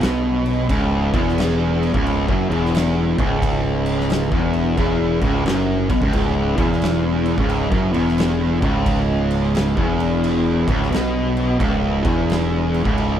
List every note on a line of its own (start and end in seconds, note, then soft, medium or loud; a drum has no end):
0.01 0.65 B1 medium
0.01 0.68 B2 loud
0.01 snare loud
0.01 crash medium
0.46 crash medium
0.69 1.10 C#1 loud
0.69 1.12 C#2 loud
0.69 kick loud
0.69 crash medium
1.13 1.89 E1 medium
1.13 1.92 E2 loud
1.13 kick loud
1.13 crash medium
1.29 snare soft
1.38 snare loud
1.38 crash medium
1.83 crash medium
1.93 2.25 C#1 medium
1.93 2.26 C#2 loud
1.93 kick loud
2.06 crash medium
2.28 2.49 F#1 loud
2.28 2.48 F#2 loud
2.28 kick loud
2.49 3.13 E1 medium
2.49 3.16 E2 loud
2.49 crash medium
2.65 snare soft
2.75 snare loud
2.75 crash medium
3.18 4.28 C#1 loud
3.18 4.30 C#2 medium
3.18 kick loud
3.18 crash medium
3.42 kick loud
3.42 crash medium
3.86 crash medium
4.01 snare soft
4.10 snare loud
4.10 crash medium
4.31 4.74 E1 loud
4.31 4.76 E2 loud
4.31 kick loud
4.53 crash medium
4.77 5.18 E1 loud
4.77 5.20 E2 loud
4.77 kick loud
4.77 crash medium
5.21 5.44 C#1 loud
5.21 5.44 C#2 loud
5.21 kick loud
5.21 crash medium
5.46 5.87 F#1 medium
5.46 5.88 F#2 loud
5.46 snare loud
5.46 crash medium
5.90 6.01 B1 loud
5.90 6.01 B2 loud
5.90 kick loud
5.90 crash medium
6.02 6.13 C#1 loud
6.02 6.13 C#2 loud
6.02 kick loud
6.13 6.54 C#1 loud
6.13 6.56 C#2 loud
6.13 kick loud
6.13 crash medium
6.57 7.34 E1 medium
6.57 7.36 E2 loud
6.57 kick loud
6.57 crash medium
6.72 snare soft
6.82 snare loud
6.82 crash medium
7.26 crash medium
7.37 7.69 C#1 loud
7.37 7.70 C#2 loud
7.37 kick loud
7.50 crash medium
7.70 7.93 F#1 loud
7.70 7.92 F#2 loud
7.70 kick loud
7.93 8.59 E1 medium
7.93 8.60 E2 loud
7.93 crash medium
8.08 snare soft
8.18 snare loud
8.18 crash medium
8.61 9.73 C#1 loud
8.61 9.75 C#2 medium
8.61 kick loud
8.61 crash medium
8.86 kick loud
8.86 crash medium
9.31 crash medium
9.55 snare loud
9.55 crash medium
9.77 10.63 E1 loud
9.77 10.66 E2 loud
9.77 kick loud
10.00 crash medium
10.24 crash medium
10.68 10.90 C#1 loud
10.68 10.91 C#2 loud
10.68 kick loud
10.68 crash medium
10.83 snare soft
10.91 11.55 B1 medium
10.91 11.59 B2 loud
10.91 snare loud
10.91 crash medium
11.37 crash medium
11.59 12.01 C#1 medium
11.59 12.03 C#2 loud
11.59 kick loud
11.59 crash medium
12.04 12.81 E1 medium
12.04 12.84 E2 loud
12.04 kick loud
12.04 crash medium
12.30 snare loud
12.30 crash medium
12.74 crash medium
12.84 13.17 C#1 loud
12.84 13.18 C#2 loud
12.84 kick loud
12.98 crash medium